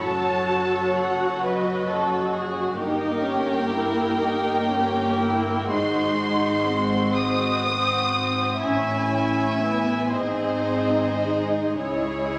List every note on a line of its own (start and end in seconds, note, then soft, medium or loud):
0.00 2.76 F#1 soft
0.00 2.76 F#2 soft
0.00 2.79 F#3 soft
0.00 2.76 F#4 soft
0.00 1.41 A4 soft
0.00 1.41 C#5 soft
0.00 0.98 A5 medium
0.97 1.43 F#5 medium
1.44 1.89 B4 soft
1.44 2.35 D#5 medium
1.90 2.35 A4 soft
2.34 2.80 G#4 soft
2.79 5.69 G1 soft
2.79 5.70 G2 soft
2.79 5.70 A#3 soft
2.79 3.27 D#4 soft
2.79 4.19 G4 soft
2.79 5.74 A#4 soft
2.79 5.69 G5 medium
3.26 3.74 C#4 soft
3.73 4.20 E4 soft
4.20 4.69 D#4 soft
4.20 5.71 G4 soft
4.69 5.21 C#4 soft
5.22 5.73 E4 soft
5.72 8.63 G#1 soft
5.72 8.64 G#2 soft
5.72 7.14 G#3 soft
5.72 6.22 D#4 soft
5.72 8.59 F#4 soft
5.72 7.13 C5 soft
5.72 7.13 C6 medium
6.23 6.69 D#4 soft
6.69 7.65 C4 soft
7.15 7.64 G#3 soft
7.15 8.61 C5 soft
7.15 8.63 D#6 medium
7.66 8.13 C4 soft
8.14 8.63 C4 soft
8.62 10.10 A1 soft
8.62 10.11 A2 soft
8.62 9.13 C#4 soft
8.62 10.10 E4 soft
8.62 10.10 E5 soft
8.62 10.10 G#5 medium
9.14 9.62 C#4 soft
9.63 10.14 B3 soft
10.12 11.77 G#1 soft
10.12 11.77 G#2 soft
10.12 10.66 C4 soft
10.12 11.78 D#4 soft
10.12 11.77 G#4 soft
10.12 11.77 C5 soft
10.12 11.77 D#5 medium
10.68 11.21 C4 soft
11.22 11.76 G#3 soft
11.77 12.39 C#2 soft
11.77 12.39 C#3 soft
11.77 12.39 G#3 soft
11.77 12.39 E4 soft
11.77 12.39 G#4 soft
11.77 12.39 C#5 soft